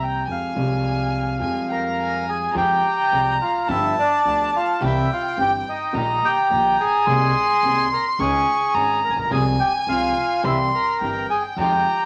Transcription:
Already playing: C2 C3 E3 A#3 C4 G4 A#5
0.03 G5
0.27 F2 F3 G#3 C4 G4 G#5
0.32 F5
0.54 C2 C3 F3 G#3 C4
0.59 G3
1.39 F2 F3 G3 G#3 C4 G#5
1.69 A#4 G5 A#5
1.99 G#5
2.29 G#4 G#5
2.54 F2 F3 G#3 C4 F4 G4 G#4 G5 A#5
3.12 C2 C3 F3 G#3 C4 F4 G#4
3.41 F4 F5
3.68 G1 G2 F3 B3 D4 E4 F4 G4 E5 A5
3.98 D4 D5
4.25 D2 D3 F3 B3 D4 F4 G4
4.56 F4 F5
4.80 C2 C3 E3 G3 C4 E4 G4 G5
4.85 E4 E5
5.13 F4 F5
5.37 G1 G2 E3 G3 C4 E4 G4
5.41 G5
5.69 D#4 D#5
5.93 A#1 A#2 D#3 G3 A#3 D#4 G4 A#5
6.25 G4 G5
6.50 A#1 A#2 D#3 G3 A#3 D#4 G4 A#5
6.80 G#4 G#5
7.06 C2 C3 D#3 A#3 C4 G#4 C6
7.63 C2 C3 D#3 A#3 C4 G#4
7.93 A#4 A#5
8.19 C#2 C#3 D#3 G#3 C#4 D#4 G#4 G#5 C#6
8.74 G#1 G#2 D#3 G#3 C#4 D#4 G#4 A#5
9.05 A#4 A#5
9.09 A1 G#5
9.16 A#1 A#4 A#5
9.24 B1
9.30 C2 C3 F3 G#3 C4 F4 G#4 G#5
9.60 G4 G5
9.87 C2 C3 F3 G#3 C4 F4 G#4 F5
10.43 C2 C3 E3 G3 C4 E4 G4 E5 C6
10.75 A#4 A#5
11.01 G1 G2 E3 G3 C4 E4 G4 G5
11.30 G#4 G#5
11.57 F2 D#3 F3 G#3 C4 D#4 F4 G4 G5 A#5

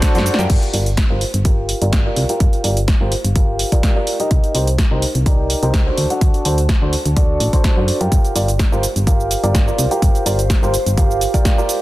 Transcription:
Already playing: D4 F#4 A4 C5 D5 F#5 A5
0.02 kick, snare, closed hi-hat, shaker
0.15 F#2 D4 F#4 A4 C5, snare, closed hi-hat, shaker
0.26 open hi-hat, shaker
0.34 snare
0.39 F#2 F4 G4 A#4 G5, closed hi-hat, shaker
0.50 G1 G4, kick, closed hi-hat, crash
0.62 C5, closed hi-hat
0.74 G1 F4 G4 A#4 D5, open hi-hat
0.86 closed hi-hat
0.97 kick, snare, closed hi-hat
1.10 G1 F4 G4 A#4 C5
1.21 open hi-hat
1.34 G1, closed hi-hat
1.45 F4 G4 A#4 F5, kick, closed hi-hat
1.63 F5
1.69 open hi-hat
1.82 G1 F4 G4 A#4 D5, closed hi-hat
1.93 kick, snare, closed hi-hat
2.05 F4 G4 A#4 D5
2.16 C2, open hi-hat
2.29 F4 G4 A#4 G5, closed hi-hat
2.40 G1, kick, closed hi-hat
2.53 closed hi-hat
2.64 G1 F4 G4 A#4 D5, open hi-hat
2.77 closed hi-hat
2.88 kick, snare, closed hi-hat
3.01 G1 F4 G4 A#4 C5
3.12 open hi-hat
3.24 G1, closed hi-hat
3.36 F4 G4 A#4 F5, kick, closed hi-hat
3.59 open hi-hat
3.72 F4 G4 A#4 D5, kick, closed hi-hat
3.83 kick, snare, closed hi-hat
3.96 F4 G4 A#4 D5
4.07 open hi-hat
4.20 D#4 G4 A#4 D#5, closed hi-hat
4.31 C2 A#4, kick, closed hi-hat
4.44 closed hi-hat
4.55 C2 D#4 G4 A#4 C5, open hi-hat
4.62 D#4
4.67 closed hi-hat
4.78 kick, snare, closed hi-hat
4.91 C2 D#4 G4 A#4 C5
5.02 G5, open hi-hat
5.15 C2, closed hi-hat
5.26 D#4 G4 A#4 D5, kick, closed hi-hat
5.50 open hi-hat
5.63 C2 D#4 G4 A#4 C5, closed hi-hat
5.74 kick, snare, closed hi-hat
5.86 D4 F#4 A4 C5
5.98 D2 A5, open hi-hat
6.10 D4 F#4 A4 F#5, closed hi-hat
6.21 D2, kick, closed hi-hat
6.28 F#5
6.34 closed hi-hat
6.42 D2 D4 F#4 A4 C5 D5, open hi-hat
6.58 closed hi-hat
6.69 kick, snare, closed hi-hat
6.82 D2 D4 F#4 A4 C5
6.93 open hi-hat
7.05 D2, closed hi-hat
7.17 D4 F#4 A4 D5, kick, closed hi-hat
7.40 A1, open hi-hat
7.53 D4 F#4 A4 C5, kick, closed hi-hat
7.64 kick, snare, closed hi-hat
7.77 F#2 D4 F#4 A4 C5
7.88 open hi-hat
8.01 F#2 F4 G4 A#4 G5, closed hi-hat
8.12 G1 G4, kick, closed hi-hat, shaker
8.25 closed hi-hat, shaker
8.36 G1 F4 G4 A#4 D5, open hi-hat, shaker
8.48 C5 F5, closed hi-hat, shaker
8.59 kick, snare, closed hi-hat, shaker
8.72 G1 F4 G4 A#4 C5, shaker
8.83 open hi-hat, shaker
8.96 G1, closed hi-hat, shaker
9.07 F4 G4 A#4 F5, kick, closed hi-hat, shaker
9.20 shaker
9.31 open hi-hat, shaker
9.43 G1 F4 G4 A#4 D5, closed hi-hat, shaker
9.55 kick, snare, closed hi-hat, shaker
9.67 F4 G4 A#4 D5, shaker
9.78 C2, open hi-hat, shaker
9.91 F4 G4 A#4 G5, closed hi-hat, shaker
10.02 G1, kick, closed hi-hat, shaker
10.15 closed hi-hat, shaker
10.26 G1 F4 G4 A#4 D5, open hi-hat, shaker
10.39 closed hi-hat, shaker
10.50 kick, snare, closed hi-hat, shaker
10.63 G1 F4 G4 A#4 C5, shaker
10.74 open hi-hat, shaker
10.86 G1, closed hi-hat, shaker
10.97 F4 G4 A#4 F5, kick, closed hi-hat, shaker
11.11 shaker
11.21 open hi-hat, shaker
11.34 F4 G4 A#4 D5, kick, closed hi-hat, shaker
11.45 kick, snare, closed hi-hat, shaker
11.58 F4 G4 A#4 D5, shaker
11.69 open hi-hat, shaker

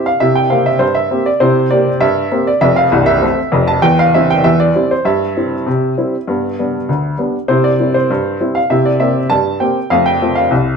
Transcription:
0.06 F5
0.20 C3 E4 E5
0.35 G5
0.50 A#3 C4 G4 F5
0.66 E5
0.79 G2 C5
0.94 E5
1.11 A#3 C4 G4
1.26 D5
1.40 C3 E4 C5
1.70 A#3 C4 G4 D5
2.00 G2 E5
2.31 A#3 C4 G4
2.47 D5
2.61 F1 F2 E5
2.76 F5
2.92 C1 C2
3.06 E5
3.21 A3 C4 A4
3.52 F1 F2
3.68 A5
3.82 E2 G5
3.99 F5
4.14 G3 C4 E4 E5
4.30 G5
4.44 E2 E5
4.60 D5
4.75 G3 C4 E4
4.91 C5
5.05 G2 E5
5.37 G3 C4 E4
5.67 C3
5.97 G3 C4 E4
6.28 G2 B3
6.59 G3 B3 D4
6.89 D2
7.18 G3 B3 D4
7.48 C3 E4 C5
7.64 D5
7.79 G3 C4 E4
7.94 C5
8.10 G2
8.40 G3 C4 E4
8.55 F5
8.70 C3 E4 E5
8.85 D5
9.00 A#3 C4 G4 E5
9.30 G2 A5
9.60 A#3 C4 G4 G5
9.90 F2 A3 F5
10.06 G5
10.22 A3 C4 F4
10.35 F5
10.51 C2

